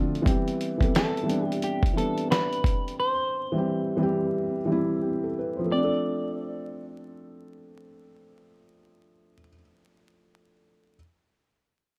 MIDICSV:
0, 0, Header, 1, 5, 480
1, 0, Start_track
1, 0, Tempo, 681818
1, 183, Time_signature, 4, 2, 24, 8
1, 8437, End_track
2, 0, Start_track
2, 0, Title_t, "Clean electric guitar"
2, 0, Program_c, 0, 27
2, 674, Note_on_c, 0, 69, 80
2, 1040, Note_off_c, 0, 69, 0
2, 1040, Note_on_c, 0, 67, 80
2, 1153, Note_off_c, 0, 67, 0
2, 1153, Note_on_c, 0, 67, 79
2, 1390, Note_on_c, 0, 69, 95
2, 1395, Note_off_c, 0, 67, 0
2, 1625, Note_off_c, 0, 69, 0
2, 1628, Note_on_c, 0, 71, 101
2, 2106, Note_off_c, 0, 71, 0
2, 2109, Note_on_c, 0, 72, 105
2, 3003, Note_off_c, 0, 72, 0
2, 3003, Note_on_c, 0, 71, 105
2, 3518, Note_off_c, 0, 71, 0
2, 4028, Note_on_c, 0, 74, 94
2, 6670, Note_off_c, 0, 74, 0
2, 8437, End_track
3, 0, Start_track
3, 0, Title_t, "Felt piano"
3, 0, Program_c, 1, 0
3, 0, Control_c, 1, 64, 127
3, 0, Note_on_c, 1, 53, 77
3, 0, Note_on_c, 1, 57, 74
3, 0, Note_on_c, 1, 60, 70
3, 0, Note_on_c, 1, 62, 72
3, 0, Note_on_c, 1, 65, 88
3, 0, Note_on_c, 1, 69, 99
3, 0, Note_on_c, 1, 72, 105
3, 135, Note_off_c, 1, 53, 0
3, 142, Note_off_c, 1, 57, 0
3, 146, Note_off_c, 1, 60, 0
3, 152, Note_off_c, 1, 62, 0
3, 156, Note_on_c, 1, 52, 101
3, 158, Note_off_c, 1, 65, 0
3, 165, Note_on_c, 1, 55, 84
3, 177, Note_on_c, 1, 59, 86
3, 189, Note_on_c, 1, 60, 98
3, 192, Control_c, 1, 64, 0
3, 194, Note_off_c, 1, 72, 0
3, 196, Note_off_c, 1, 69, 0
3, 200, Note_on_c, 1, 67, 99
3, 337, Control_c, 1, 64, 127
3, 475, Note_off_c, 1, 52, 0
3, 479, Note_off_c, 1, 55, 0
3, 485, Note_off_c, 1, 59, 0
3, 491, Note_off_c, 1, 60, 0
3, 497, Note_off_c, 1, 67, 0
3, 547, Note_on_c, 1, 52, 73
3, 558, Note_on_c, 1, 55, 70
3, 570, Note_on_c, 1, 59, 69
3, 578, Note_on_c, 1, 60, 69
3, 589, Note_on_c, 1, 69, 80
3, 840, Note_off_c, 1, 52, 0
3, 845, Note_off_c, 1, 55, 0
3, 851, Note_off_c, 1, 59, 0
3, 855, Note_off_c, 1, 60, 0
3, 861, Note_off_c, 1, 69, 0
3, 866, Note_on_c, 1, 52, 81
3, 877, Note_on_c, 1, 55, 73
3, 888, Note_on_c, 1, 59, 74
3, 899, Note_on_c, 1, 60, 70
3, 907, Note_on_c, 1, 62, 90
3, 1295, Note_off_c, 1, 52, 0
3, 1301, Note_off_c, 1, 55, 0
3, 1306, Note_off_c, 1, 59, 0
3, 1312, Note_off_c, 1, 60, 0
3, 1316, Note_off_c, 1, 62, 0
3, 1362, Note_on_c, 1, 52, 72
3, 1373, Note_on_c, 1, 55, 69
3, 1382, Note_on_c, 1, 59, 73
3, 1393, Note_on_c, 1, 60, 58
3, 1405, Note_on_c, 1, 62, 73
3, 2168, Note_off_c, 1, 52, 0
3, 2174, Note_off_c, 1, 55, 0
3, 2178, Note_off_c, 1, 59, 0
3, 2184, Note_off_c, 1, 60, 0
3, 2190, Note_off_c, 1, 62, 0
3, 2478, Note_on_c, 1, 52, 86
3, 2490, Note_on_c, 1, 55, 80
3, 2511, Note_on_c, 1, 60, 70
3, 2521, Note_on_c, 1, 67, 90
3, 2765, Note_off_c, 1, 52, 0
3, 2771, Note_off_c, 1, 55, 0
3, 2782, Note_off_c, 1, 60, 0
3, 2787, Note_off_c, 1, 67, 0
3, 2794, Note_on_c, 1, 52, 93
3, 2802, Note_on_c, 1, 55, 84
3, 2824, Note_on_c, 1, 60, 81
3, 2836, Note_on_c, 1, 67, 104
3, 3219, Note_off_c, 1, 52, 0
3, 3223, Note_off_c, 1, 55, 0
3, 3234, Note_off_c, 1, 60, 0
3, 3240, Note_off_c, 1, 67, 0
3, 3274, Note_on_c, 1, 52, 88
3, 3287, Note_on_c, 1, 55, 84
3, 3307, Note_on_c, 1, 60, 72
3, 3320, Note_on_c, 1, 64, 106
3, 3535, Note_on_c, 1, 67, 63
3, 3678, Note_off_c, 1, 67, 0
3, 3686, Note_on_c, 1, 69, 65
3, 3700, Note_off_c, 1, 52, 0
3, 3706, Note_off_c, 1, 55, 0
3, 3716, Note_off_c, 1, 60, 0
3, 3723, Note_off_c, 1, 64, 0
3, 3777, Note_off_c, 1, 69, 0
3, 3792, Note_on_c, 1, 71, 65
3, 3919, Note_on_c, 1, 72, 60
3, 3927, Note_off_c, 1, 71, 0
3, 3935, Note_on_c, 1, 53, 81
3, 3981, Note_on_c, 1, 57, 76
3, 4024, Note_on_c, 1, 60, 79
3, 4032, Control_c, 1, 64, 0
3, 4067, Note_on_c, 1, 62, 79
3, 4112, Note_on_c, 1, 69, 93
3, 4149, Control_c, 1, 64, 127
3, 4152, Note_off_c, 1, 72, 0
3, 6577, Note_off_c, 1, 53, 0
3, 6623, Note_off_c, 1, 57, 0
3, 6665, Note_off_c, 1, 60, 0
3, 6709, Note_off_c, 1, 62, 0
3, 6754, Note_off_c, 1, 69, 0
3, 7714, Control_c, 1, 64, 0
3, 8437, End_track
4, 0, Start_track
4, 0, Title_t, "Upright bass"
4, 0, Program_c, 2, 32
4, 0, Note_on_c, 2, 38, 91
4, 71, Note_off_c, 2, 38, 0
4, 8437, End_track
5, 0, Start_track
5, 0, Title_t, "Drums"
5, 107, Note_on_c, 9, 42, 41
5, 177, Note_off_c, 9, 42, 0
5, 184, Note_on_c, 9, 36, 103
5, 193, Note_on_c, 9, 42, 85
5, 254, Note_off_c, 9, 36, 0
5, 263, Note_off_c, 9, 42, 0
5, 336, Note_on_c, 9, 42, 49
5, 406, Note_off_c, 9, 42, 0
5, 428, Note_on_c, 9, 42, 68
5, 498, Note_off_c, 9, 42, 0
5, 567, Note_on_c, 9, 36, 79
5, 581, Note_on_c, 9, 42, 49
5, 637, Note_off_c, 9, 36, 0
5, 651, Note_off_c, 9, 42, 0
5, 669, Note_on_c, 9, 42, 91
5, 676, Note_on_c, 9, 38, 112
5, 739, Note_off_c, 9, 42, 0
5, 746, Note_off_c, 9, 38, 0
5, 826, Note_on_c, 9, 42, 48
5, 896, Note_off_c, 9, 42, 0
5, 911, Note_on_c, 9, 42, 70
5, 982, Note_off_c, 9, 42, 0
5, 1070, Note_on_c, 9, 42, 51
5, 1140, Note_off_c, 9, 42, 0
5, 1143, Note_on_c, 9, 42, 75
5, 1213, Note_off_c, 9, 42, 0
5, 1286, Note_on_c, 9, 36, 98
5, 1309, Note_on_c, 9, 42, 55
5, 1357, Note_off_c, 9, 36, 0
5, 1379, Note_off_c, 9, 42, 0
5, 1396, Note_on_c, 9, 42, 75
5, 1466, Note_off_c, 9, 42, 0
5, 1532, Note_on_c, 9, 42, 47
5, 1603, Note_off_c, 9, 42, 0
5, 1632, Note_on_c, 9, 38, 100
5, 1633, Note_on_c, 9, 42, 70
5, 1702, Note_off_c, 9, 38, 0
5, 1703, Note_off_c, 9, 42, 0
5, 1778, Note_on_c, 9, 42, 45
5, 1849, Note_off_c, 9, 42, 0
5, 1859, Note_on_c, 9, 36, 104
5, 1875, Note_on_c, 9, 42, 65
5, 1930, Note_off_c, 9, 36, 0
5, 1945, Note_off_c, 9, 42, 0
5, 2027, Note_on_c, 9, 42, 42
5, 2097, Note_off_c, 9, 42, 0
5, 8437, End_track
0, 0, End_of_file